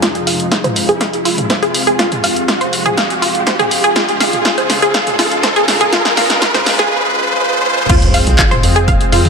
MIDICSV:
0, 0, Header, 1, 8, 480
1, 0, Start_track
1, 0, Key_signature, -4, "minor"
1, 0, Tempo, 491803
1, 24, Time_signature, 4, 2, 24, 8
1, 9069, End_track
2, 0, Start_track
2, 0, Title_t, "Synth arpeggio sound"
2, 0, Program_c, 0, 84
2, 23, Note_on_c, 0, 65, 101
2, 77, Note_off_c, 0, 65, 0
2, 263, Note_on_c, 0, 77, 76
2, 381, Note_off_c, 0, 77, 0
2, 503, Note_on_c, 0, 65, 82
2, 621, Note_off_c, 0, 65, 0
2, 626, Note_on_c, 0, 72, 74
2, 711, Note_off_c, 0, 72, 0
2, 867, Note_on_c, 0, 68, 102
2, 978, Note_off_c, 0, 68, 0
2, 983, Note_on_c, 0, 77, 99
2, 1037, Note_off_c, 0, 77, 0
2, 1223, Note_on_c, 0, 65, 79
2, 1341, Note_off_c, 0, 65, 0
2, 1464, Note_on_c, 0, 72, 78
2, 1553, Note_off_c, 0, 72, 0
2, 1587, Note_on_c, 0, 68, 101
2, 1671, Note_off_c, 0, 68, 0
2, 1826, Note_on_c, 0, 68, 102
2, 1938, Note_off_c, 0, 68, 0
2, 1942, Note_on_c, 0, 65, 100
2, 1997, Note_off_c, 0, 65, 0
2, 2184, Note_on_c, 0, 77, 75
2, 2302, Note_off_c, 0, 77, 0
2, 2423, Note_on_c, 0, 65, 79
2, 2541, Note_off_c, 0, 65, 0
2, 2547, Note_on_c, 0, 72, 79
2, 2631, Note_off_c, 0, 72, 0
2, 2787, Note_on_c, 0, 68, 106
2, 2899, Note_off_c, 0, 68, 0
2, 2904, Note_on_c, 0, 77, 99
2, 2957, Note_off_c, 0, 77, 0
2, 3143, Note_on_c, 0, 65, 75
2, 3261, Note_off_c, 0, 65, 0
2, 3384, Note_on_c, 0, 72, 84
2, 3473, Note_off_c, 0, 72, 0
2, 3507, Note_on_c, 0, 68, 103
2, 3591, Note_off_c, 0, 68, 0
2, 3748, Note_on_c, 0, 68, 107
2, 3859, Note_off_c, 0, 68, 0
2, 3865, Note_on_c, 0, 65, 102
2, 3918, Note_off_c, 0, 65, 0
2, 4105, Note_on_c, 0, 77, 79
2, 4222, Note_off_c, 0, 77, 0
2, 4345, Note_on_c, 0, 65, 83
2, 4462, Note_off_c, 0, 65, 0
2, 4468, Note_on_c, 0, 72, 82
2, 4552, Note_off_c, 0, 72, 0
2, 4708, Note_on_c, 0, 68, 101
2, 4819, Note_off_c, 0, 68, 0
2, 4825, Note_on_c, 0, 77, 103
2, 4878, Note_off_c, 0, 77, 0
2, 5066, Note_on_c, 0, 65, 73
2, 5183, Note_off_c, 0, 65, 0
2, 5305, Note_on_c, 0, 72, 84
2, 5393, Note_off_c, 0, 72, 0
2, 5429, Note_on_c, 0, 68, 106
2, 5512, Note_off_c, 0, 68, 0
2, 5668, Note_on_c, 0, 68, 107
2, 5779, Note_off_c, 0, 68, 0
2, 5784, Note_on_c, 0, 65, 106
2, 5838, Note_off_c, 0, 65, 0
2, 6025, Note_on_c, 0, 77, 76
2, 6142, Note_off_c, 0, 77, 0
2, 6265, Note_on_c, 0, 65, 83
2, 6382, Note_off_c, 0, 65, 0
2, 6388, Note_on_c, 0, 72, 76
2, 6472, Note_off_c, 0, 72, 0
2, 6628, Note_on_c, 0, 68, 107
2, 6739, Note_off_c, 0, 68, 0
2, 7705, Note_on_c, 0, 65, 104
2, 7705, Note_on_c, 0, 77, 68
2, 7758, Note_off_c, 0, 65, 0
2, 7758, Note_off_c, 0, 77, 0
2, 7945, Note_on_c, 0, 77, 81
2, 7945, Note_on_c, 0, 89, 53
2, 8062, Note_off_c, 0, 77, 0
2, 8062, Note_off_c, 0, 89, 0
2, 8185, Note_on_c, 0, 65, 80
2, 8185, Note_on_c, 0, 77, 55
2, 8302, Note_off_c, 0, 65, 0
2, 8302, Note_off_c, 0, 77, 0
2, 8308, Note_on_c, 0, 72, 80
2, 8308, Note_on_c, 0, 84, 55
2, 8392, Note_off_c, 0, 72, 0
2, 8392, Note_off_c, 0, 84, 0
2, 8548, Note_on_c, 0, 68, 106
2, 8548, Note_on_c, 0, 80, 74
2, 8659, Note_off_c, 0, 68, 0
2, 8659, Note_off_c, 0, 80, 0
2, 8665, Note_on_c, 0, 77, 100
2, 8665, Note_on_c, 0, 89, 68
2, 8718, Note_off_c, 0, 77, 0
2, 8718, Note_off_c, 0, 89, 0
2, 8905, Note_on_c, 0, 65, 79
2, 8905, Note_on_c, 0, 77, 53
2, 9022, Note_off_c, 0, 65, 0
2, 9022, Note_off_c, 0, 77, 0
2, 9069, End_track
3, 0, Start_track
3, 0, Title_t, "Analog synth pad"
3, 0, Program_c, 1, 89
3, 0, Note_on_c, 1, 56, 70
3, 24, Note_on_c, 1, 65, 88
3, 25, Note_on_c, 1, 41, 81
3, 25, Note_on_c, 1, 48, 71
3, 3826, Note_off_c, 1, 48, 0
3, 3826, Note_off_c, 1, 56, 0
3, 3827, Note_off_c, 1, 41, 0
3, 3864, Note_on_c, 1, 37, 81
3, 3864, Note_on_c, 1, 49, 75
3, 3864, Note_on_c, 1, 56, 75
3, 7665, Note_off_c, 1, 65, 0
3, 7666, Note_off_c, 1, 37, 0
3, 7666, Note_off_c, 1, 49, 0
3, 7666, Note_off_c, 1, 56, 0
3, 7705, Note_on_c, 1, 56, 84
3, 7705, Note_on_c, 1, 60, 73
3, 7706, Note_on_c, 1, 65, 90
3, 9069, Note_off_c, 1, 56, 0
3, 9069, Note_off_c, 1, 60, 0
3, 9069, Note_off_c, 1, 65, 0
3, 9069, End_track
4, 0, Start_track
4, 0, Title_t, "Synth drone"
4, 0, Program_c, 2, 95
4, 0, Note_on_c, 2, 41, 76
4, 0, Note_on_c, 2, 53, 73
4, 6744, Note_off_c, 2, 41, 0
4, 6745, Note_off_c, 2, 53, 0
4, 9069, End_track
5, 0, Start_track
5, 0, Title_t, "Analog synth bass"
5, 0, Program_c, 3, 38
5, 7705, Note_on_c, 3, 41, 94
5, 8031, Note_off_c, 3, 41, 0
5, 8069, Note_on_c, 3, 36, 79
5, 8163, Note_off_c, 3, 36, 0
5, 8426, Note_on_c, 3, 41, 97
5, 8751, Note_off_c, 3, 41, 0
5, 8906, Note_on_c, 3, 41, 91
5, 9069, Note_off_c, 3, 41, 0
5, 9069, End_track
6, 0, Start_track
6, 0, Title_t, "Riser"
6, 0, Program_c, 4, 103
6, 0, Note_on_c, 4, 60, 76
6, 7705, Note_off_c, 4, 60, 0
6, 9069, End_track
7, 0, Start_track
7, 0, Title_t, "Sub drop"
7, 0, Program_c, 5, 103
7, 7705, Note_on_c, 5, 60, 76
7, 9069, Note_off_c, 5, 60, 0
7, 9069, End_track
8, 0, Start_track
8, 0, Title_t, "Drums"
8, 23, Note_on_c, 9, 36, 113
8, 24, Note_on_c, 9, 38, 51
8, 24, Note_on_c, 9, 42, 63
8, 121, Note_off_c, 9, 36, 0
8, 122, Note_off_c, 9, 38, 0
8, 122, Note_off_c, 9, 42, 0
8, 147, Note_on_c, 9, 42, 40
8, 245, Note_off_c, 9, 42, 0
8, 263, Note_on_c, 9, 46, 100
8, 361, Note_off_c, 9, 46, 0
8, 388, Note_on_c, 9, 42, 42
8, 486, Note_off_c, 9, 42, 0
8, 503, Note_on_c, 9, 36, 117
8, 503, Note_on_c, 9, 38, 54
8, 503, Note_on_c, 9, 42, 64
8, 601, Note_off_c, 9, 36, 0
8, 601, Note_off_c, 9, 38, 0
8, 601, Note_off_c, 9, 42, 0
8, 628, Note_on_c, 9, 42, 40
8, 628, Note_on_c, 9, 45, 91
8, 726, Note_off_c, 9, 42, 0
8, 726, Note_off_c, 9, 45, 0
8, 743, Note_on_c, 9, 46, 98
8, 841, Note_off_c, 9, 46, 0
8, 868, Note_on_c, 9, 42, 40
8, 965, Note_off_c, 9, 42, 0
8, 983, Note_on_c, 9, 36, 116
8, 983, Note_on_c, 9, 38, 52
8, 983, Note_on_c, 9, 42, 62
8, 1080, Note_off_c, 9, 38, 0
8, 1080, Note_off_c, 9, 42, 0
8, 1081, Note_off_c, 9, 36, 0
8, 1107, Note_on_c, 9, 42, 44
8, 1205, Note_off_c, 9, 42, 0
8, 1223, Note_on_c, 9, 46, 96
8, 1321, Note_off_c, 9, 46, 0
8, 1347, Note_on_c, 9, 42, 43
8, 1347, Note_on_c, 9, 45, 96
8, 1445, Note_off_c, 9, 42, 0
8, 1445, Note_off_c, 9, 45, 0
8, 1463, Note_on_c, 9, 36, 116
8, 1463, Note_on_c, 9, 38, 57
8, 1463, Note_on_c, 9, 42, 65
8, 1560, Note_off_c, 9, 38, 0
8, 1560, Note_off_c, 9, 42, 0
8, 1561, Note_off_c, 9, 36, 0
8, 1587, Note_on_c, 9, 42, 41
8, 1684, Note_off_c, 9, 42, 0
8, 1703, Note_on_c, 9, 46, 109
8, 1801, Note_off_c, 9, 46, 0
8, 1827, Note_on_c, 9, 42, 42
8, 1924, Note_off_c, 9, 42, 0
8, 1944, Note_on_c, 9, 36, 108
8, 1944, Note_on_c, 9, 38, 63
8, 1944, Note_on_c, 9, 42, 67
8, 2041, Note_off_c, 9, 36, 0
8, 2041, Note_off_c, 9, 38, 0
8, 2041, Note_off_c, 9, 42, 0
8, 2068, Note_on_c, 9, 42, 43
8, 2068, Note_on_c, 9, 45, 92
8, 2165, Note_off_c, 9, 42, 0
8, 2165, Note_off_c, 9, 45, 0
8, 2184, Note_on_c, 9, 46, 101
8, 2281, Note_off_c, 9, 46, 0
8, 2308, Note_on_c, 9, 42, 42
8, 2405, Note_off_c, 9, 42, 0
8, 2423, Note_on_c, 9, 36, 116
8, 2424, Note_on_c, 9, 38, 62
8, 2424, Note_on_c, 9, 42, 67
8, 2521, Note_off_c, 9, 36, 0
8, 2522, Note_off_c, 9, 38, 0
8, 2522, Note_off_c, 9, 42, 0
8, 2548, Note_on_c, 9, 42, 45
8, 2646, Note_off_c, 9, 42, 0
8, 2663, Note_on_c, 9, 46, 96
8, 2761, Note_off_c, 9, 46, 0
8, 2789, Note_on_c, 9, 42, 42
8, 2789, Note_on_c, 9, 45, 92
8, 2887, Note_off_c, 9, 42, 0
8, 2887, Note_off_c, 9, 45, 0
8, 2903, Note_on_c, 9, 36, 112
8, 2904, Note_on_c, 9, 38, 65
8, 2904, Note_on_c, 9, 42, 65
8, 3001, Note_off_c, 9, 36, 0
8, 3002, Note_off_c, 9, 38, 0
8, 3002, Note_off_c, 9, 42, 0
8, 3029, Note_on_c, 9, 42, 43
8, 3127, Note_off_c, 9, 42, 0
8, 3146, Note_on_c, 9, 46, 93
8, 3243, Note_off_c, 9, 46, 0
8, 3269, Note_on_c, 9, 42, 42
8, 3366, Note_off_c, 9, 42, 0
8, 3383, Note_on_c, 9, 36, 117
8, 3385, Note_on_c, 9, 38, 70
8, 3385, Note_on_c, 9, 42, 70
8, 3481, Note_off_c, 9, 36, 0
8, 3482, Note_off_c, 9, 38, 0
8, 3482, Note_off_c, 9, 42, 0
8, 3509, Note_on_c, 9, 42, 42
8, 3509, Note_on_c, 9, 45, 93
8, 3607, Note_off_c, 9, 42, 0
8, 3607, Note_off_c, 9, 45, 0
8, 3624, Note_on_c, 9, 46, 104
8, 3722, Note_off_c, 9, 46, 0
8, 3748, Note_on_c, 9, 42, 44
8, 3846, Note_off_c, 9, 42, 0
8, 3863, Note_on_c, 9, 36, 110
8, 3864, Note_on_c, 9, 38, 77
8, 3864, Note_on_c, 9, 42, 72
8, 3961, Note_off_c, 9, 36, 0
8, 3962, Note_off_c, 9, 38, 0
8, 3962, Note_off_c, 9, 42, 0
8, 3988, Note_on_c, 9, 42, 44
8, 4086, Note_off_c, 9, 42, 0
8, 4104, Note_on_c, 9, 38, 77
8, 4104, Note_on_c, 9, 46, 102
8, 4201, Note_off_c, 9, 38, 0
8, 4201, Note_off_c, 9, 46, 0
8, 4228, Note_on_c, 9, 42, 46
8, 4228, Note_on_c, 9, 45, 88
8, 4326, Note_off_c, 9, 42, 0
8, 4326, Note_off_c, 9, 45, 0
8, 4343, Note_on_c, 9, 36, 111
8, 4344, Note_on_c, 9, 38, 84
8, 4344, Note_on_c, 9, 42, 72
8, 4441, Note_off_c, 9, 36, 0
8, 4442, Note_off_c, 9, 38, 0
8, 4442, Note_off_c, 9, 42, 0
8, 4468, Note_on_c, 9, 42, 45
8, 4565, Note_off_c, 9, 42, 0
8, 4584, Note_on_c, 9, 38, 77
8, 4584, Note_on_c, 9, 46, 104
8, 4681, Note_off_c, 9, 38, 0
8, 4681, Note_off_c, 9, 46, 0
8, 4708, Note_on_c, 9, 42, 44
8, 4805, Note_off_c, 9, 42, 0
8, 4823, Note_on_c, 9, 36, 117
8, 4824, Note_on_c, 9, 38, 84
8, 4824, Note_on_c, 9, 42, 67
8, 4921, Note_off_c, 9, 36, 0
8, 4922, Note_off_c, 9, 38, 0
8, 4922, Note_off_c, 9, 42, 0
8, 4948, Note_on_c, 9, 42, 47
8, 4948, Note_on_c, 9, 45, 93
8, 5045, Note_off_c, 9, 42, 0
8, 5045, Note_off_c, 9, 45, 0
8, 5065, Note_on_c, 9, 38, 80
8, 5065, Note_on_c, 9, 46, 99
8, 5162, Note_off_c, 9, 38, 0
8, 5162, Note_off_c, 9, 46, 0
8, 5188, Note_on_c, 9, 42, 45
8, 5285, Note_off_c, 9, 42, 0
8, 5303, Note_on_c, 9, 38, 89
8, 5303, Note_on_c, 9, 42, 69
8, 5304, Note_on_c, 9, 36, 114
8, 5401, Note_off_c, 9, 36, 0
8, 5401, Note_off_c, 9, 38, 0
8, 5401, Note_off_c, 9, 42, 0
8, 5428, Note_on_c, 9, 42, 45
8, 5526, Note_off_c, 9, 42, 0
8, 5544, Note_on_c, 9, 38, 89
8, 5544, Note_on_c, 9, 46, 103
8, 5642, Note_off_c, 9, 38, 0
8, 5642, Note_off_c, 9, 46, 0
8, 5668, Note_on_c, 9, 42, 45
8, 5668, Note_on_c, 9, 45, 94
8, 5765, Note_off_c, 9, 42, 0
8, 5765, Note_off_c, 9, 45, 0
8, 5783, Note_on_c, 9, 38, 98
8, 5783, Note_on_c, 9, 42, 73
8, 5784, Note_on_c, 9, 36, 112
8, 5881, Note_off_c, 9, 36, 0
8, 5881, Note_off_c, 9, 38, 0
8, 5881, Note_off_c, 9, 42, 0
8, 5907, Note_on_c, 9, 38, 84
8, 5907, Note_on_c, 9, 42, 45
8, 6005, Note_off_c, 9, 38, 0
8, 6005, Note_off_c, 9, 42, 0
8, 6024, Note_on_c, 9, 38, 94
8, 6024, Note_on_c, 9, 46, 105
8, 6121, Note_off_c, 9, 38, 0
8, 6121, Note_off_c, 9, 46, 0
8, 6148, Note_on_c, 9, 38, 83
8, 6148, Note_on_c, 9, 42, 46
8, 6245, Note_off_c, 9, 38, 0
8, 6245, Note_off_c, 9, 42, 0
8, 6264, Note_on_c, 9, 36, 119
8, 6264, Note_on_c, 9, 38, 102
8, 6264, Note_on_c, 9, 42, 74
8, 6361, Note_off_c, 9, 36, 0
8, 6362, Note_off_c, 9, 38, 0
8, 6362, Note_off_c, 9, 42, 0
8, 6387, Note_on_c, 9, 38, 86
8, 6387, Note_on_c, 9, 42, 49
8, 6387, Note_on_c, 9, 45, 91
8, 6485, Note_off_c, 9, 38, 0
8, 6485, Note_off_c, 9, 42, 0
8, 6485, Note_off_c, 9, 45, 0
8, 6504, Note_on_c, 9, 38, 95
8, 6504, Note_on_c, 9, 46, 102
8, 6601, Note_off_c, 9, 38, 0
8, 6601, Note_off_c, 9, 46, 0
8, 6627, Note_on_c, 9, 38, 85
8, 6627, Note_on_c, 9, 42, 47
8, 6725, Note_off_c, 9, 38, 0
8, 6725, Note_off_c, 9, 42, 0
8, 7705, Note_on_c, 9, 36, 118
8, 7706, Note_on_c, 9, 42, 75
8, 7706, Note_on_c, 9, 49, 109
8, 7803, Note_off_c, 9, 36, 0
8, 7803, Note_off_c, 9, 42, 0
8, 7803, Note_off_c, 9, 49, 0
8, 7829, Note_on_c, 9, 42, 44
8, 7926, Note_off_c, 9, 42, 0
8, 7945, Note_on_c, 9, 46, 109
8, 8043, Note_off_c, 9, 46, 0
8, 8070, Note_on_c, 9, 42, 46
8, 8168, Note_off_c, 9, 42, 0
8, 8185, Note_on_c, 9, 36, 121
8, 8186, Note_on_c, 9, 39, 117
8, 8186, Note_on_c, 9, 42, 73
8, 8283, Note_off_c, 9, 36, 0
8, 8284, Note_off_c, 9, 39, 0
8, 8284, Note_off_c, 9, 42, 0
8, 8310, Note_on_c, 9, 42, 46
8, 8310, Note_on_c, 9, 45, 86
8, 8408, Note_off_c, 9, 42, 0
8, 8408, Note_off_c, 9, 45, 0
8, 8426, Note_on_c, 9, 46, 101
8, 8524, Note_off_c, 9, 46, 0
8, 8550, Note_on_c, 9, 42, 44
8, 8648, Note_off_c, 9, 42, 0
8, 8665, Note_on_c, 9, 36, 122
8, 8667, Note_on_c, 9, 42, 70
8, 8763, Note_off_c, 9, 36, 0
8, 8764, Note_off_c, 9, 42, 0
8, 8790, Note_on_c, 9, 42, 49
8, 8887, Note_off_c, 9, 42, 0
8, 8905, Note_on_c, 9, 46, 103
8, 9003, Note_off_c, 9, 46, 0
8, 9029, Note_on_c, 9, 45, 85
8, 9029, Note_on_c, 9, 46, 59
8, 9069, Note_off_c, 9, 45, 0
8, 9069, Note_off_c, 9, 46, 0
8, 9069, End_track
0, 0, End_of_file